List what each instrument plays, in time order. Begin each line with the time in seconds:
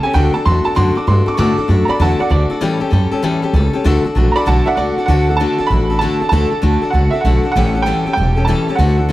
0.03 steel-string acoustic guitar G3 C#4 G4 A4, upright piano G#5, muted upright bass stroke
0.14 upright bass D2, steel-string acoustic guitar D3 A3 D4 F#4 A4, upright piano G5
0.33 steel-string acoustic guitar D4 F#4 A4, upright piano A5, muted upright bass stroke
0.45 upright bass E2, steel-string acoustic guitar A3 D4 F#4 A4, upright piano C6
0.64 steel-string acoustic guitar D4 F#4 A4, upright piano A5, muted upright bass stroke
0.75 upright bass F#2, steel-string acoustic guitar D3 A3 D4 F#4 A4, upright piano C6
0.95 steel-string acoustic guitar D4 F#4 A4, upright piano D6, muted upright bass stroke
1.07 upright bass G2, steel-string acoustic guitar A3 D4 F#4 A4, upright piano C6
1.26 steel-string acoustic guitar D4 F#4 A4, upright piano D6, muted upright bass stroke
1.34 steel-string acoustic guitar D3 A3 D4, upright piano C#6
1.38 upright bass A2, steel-string acoustic guitar F#4 A4, upright piano D6
1.58 steel-string acoustic guitar D4 F#4 A4, muted upright bass stroke
1.68 upright bass F#2, steel-string acoustic guitar A3 D4 F#4 A4
1.85 steel-string acoustic guitar F#4 A4, upright piano A#5, muted upright bass stroke
1.89 steel-string acoustic guitar D4, upright piano D5 B5
2.00 upright bass E2, steel-string acoustic guitar D3 A3 D4 F#4 A4, upright piano F#5 A5
2.19 steel-string acoustic guitar D4 F#4 A4, upright piano D5 F#5, muted upright bass stroke
2.30 upright bass D2, steel-string acoustic guitar A3 D4 F#4 A4, upright piano D5
2.50 steel-string acoustic guitar D4 F#4 A4, muted upright bass stroke
2.61 steel-string acoustic guitar A2 E3 G3 C#4 G4 A4, upright bass A2
2.80 steel-string acoustic guitar G3 C#4 G4 A4, muted upright bass stroke
2.90 upright bass F#2, steel-string acoustic guitar G3 C#4 G4 A4
3.11 steel-string acoustic guitar G3 C#4 G4 A4, muted upright bass stroke
3.23 upright bass E2, steel-string acoustic guitar A2 E3 G3 C#4 G4 A4
3.42 steel-string acoustic guitar G3 C#4 G4 A4, muted upright bass stroke
3.53 upright bass C#2, steel-string acoustic guitar G3 C#4 G4 A4
3.73 steel-string acoustic guitar G3 C#4 G4 A4, muted upright bass stroke
3.84 upright bass D2, steel-string acoustic guitar D3 A3 D4 F#4 A4
4.04 steel-string acoustic guitar D4 F#4 A4, muted upright bass stroke
4.15 upright bass A#1, steel-string acoustic guitar A3 D4 F#4 A4
4.32 steel-string acoustic guitar A4, upright piano D5 A#5, muted upright bass stroke
4.36 steel-string acoustic guitar D4 F#4, upright piano B5
4.46 upright bass B1, steel-string acoustic guitar D3 A3 D4 F#4 A4, upright piano F#5 A5
4.66 steel-string acoustic guitar D4 F#4 A4, upright piano D5 E5 F#5, muted upright bass stroke
4.75 upright bass C#2, steel-string acoustic guitar A3 D4 F#4 A4, upright piano D5 F#5
4.97 steel-string acoustic guitar D4 F#4 A4, muted upright bass stroke
5.06 upright bass D2, steel-string acoustic guitar D3 A3 D4 F#4, upright piano F#5
5.10 steel-string acoustic guitar A4
5.29 steel-string acoustic guitar D4 F#4 A4
5.37 steel-string acoustic guitar D3 A3 F#4, upright piano A5
5.41 steel-string acoustic guitar D4 A4
5.58 steel-string acoustic guitar D4 F#4 A4, muted upright bass stroke
5.67 upright bass A1, steel-string acoustic guitar A3 D4, upright piano B5
5.71 steel-string acoustic guitar F#4 A4
5.90 steel-string acoustic guitar D4 F#4 A4
5.99 steel-string acoustic guitar D3 A3 D4 F#4 A4, upright piano A5
6.20 steel-string acoustic guitar D4 F#4 A4, muted upright bass stroke
6.29 upright bass D2, steel-string acoustic guitar D3 A3 D4 F#4, upright piano A5
6.33 steel-string acoustic guitar A4
6.50 steel-string acoustic guitar D4 F#4 A4, muted upright bass stroke
6.62 upright bass D2, steel-string acoustic guitar D3 A3 D4 F#4 A4
6.82 steel-string acoustic guitar D4 F#4 A4
6.90 upright bass C#2, steel-string acoustic guitar A3 D4 F#4, upright piano F#5
6.95 steel-string acoustic guitar A4
7.10 steel-string acoustic guitar F#4 A4, upright piano E5
7.15 steel-string acoustic guitar D4
7.21 upright bass B1, steel-string acoustic guitar D3 A3, upright piano F#5
7.25 steel-string acoustic guitar D4 F#4 A4
7.43 steel-string acoustic guitar D4 F#4 A4
7.52 upright bass A1, steel-string acoustic guitar A2, upright piano F#5
7.56 steel-string acoustic guitar E3 G3 C#4 G4 A4
7.75 steel-string acoustic guitar G3 C#4 G4 A4
7.82 steel-string acoustic guitar A2 E3 G3, upright piano G5
7.86 steel-string acoustic guitar C#4 G4 A4
8.06 steel-string acoustic guitar G3 C#4 G4 A4, muted upright bass stroke
8.13 upright bass E1, steel-string acoustic guitar G3 C#4, upright piano G5
8.17 steel-string acoustic guitar G4 A4
8.36 steel-string acoustic guitar G3 C#4 G4 A4
8.45 steel-string acoustic guitar A2 E3 G3 C#4, upright piano A5
8.49 steel-string acoustic guitar G4 A4
8.67 steel-string acoustic guitar G3 C#4 G4 A4, muted upright bass stroke
8.75 upright bass D2, steel-string acoustic guitar D3 A3 D4, upright piano F#5
8.79 steel-string acoustic guitar F#4 A4
8.98 steel-string acoustic guitar D4 F#4 A4
9.09 steel-string acoustic guitar D3